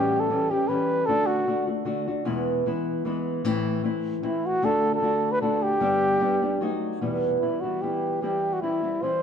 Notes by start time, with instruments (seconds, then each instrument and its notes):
Already playing: nylon-string guitar A2 E3 G3 C#4 G4, trumpet G4
0.20 trumpet A4
0.30 nylon-string guitar E3 G3 C#4 G4
0.50 nylon-string guitar G3 C#4 G4, trumpet G4
0.68 nylon-string guitar E3 G3 C#4 G4, trumpet B4
1.06 nylon-string guitar D3 A3 D4 F#4, trumpet A4
1.26 trumpet F#4
1.47 nylon-string guitar D3 A3 D4 F#4
1.67 nylon-string guitar A3 D4 F#4
1.85 nylon-string guitar D3 A3 D4 F#4
2.08 nylon-string guitar A3 D4 F#4
2.25 nylon-string guitar E2 B2 E3 G#3 B3 E4
2.66 nylon-string guitar E3 G#3 B3 E4
3.05 nylon-string guitar E3 G#3 B3 E4
3.44 nylon-string guitar A2 E3 A3 C4 E4
3.84 nylon-string guitar E3 A3 C4 E4
4.23 nylon-string guitar E3 A3 C4 E4, trumpet E4
4.46 trumpet F#4
4.62 nylon-string guitar D3 A3 D4 F#4, trumpet A4
4.95 trumpet A4
5.01 nylon-string guitar D3 A3 D4 F#4
5.32 trumpet B4
5.41 nylon-string guitar D3 A3 D4 F#4, trumpet A4
5.63 trumpet G4
5.80 nylon-string guitar G2 D3 G3 B3 D4 G4
6.20 nylon-string guitar G3 B3 D4 G4
6.42 nylon-string guitar G3 B3 D4 G4
6.61 nylon-string guitar F#3 A3 D#4 F#4
7.01 nylon-string guitar E2 B2 E3 G3 B3 E4
7.40 nylon-string guitar E3 G3 B3 E4, trumpet E4
7.61 nylon-string guitar E4, trumpet F#4
7.65 nylon-string guitar E3 G3 B3
7.82 nylon-string guitar E3 G3 B3 E4, trumpet G4
8.22 nylon-string guitar E3 G3 C4 E4, trumpet G4
8.53 trumpet F#4
8.62 nylon-string guitar E3 G3 C4 E4, trumpet E4
8.83 nylon-string guitar G3 C4 E4
9.02 nylon-string guitar E3 G3 C4 E4, trumpet C5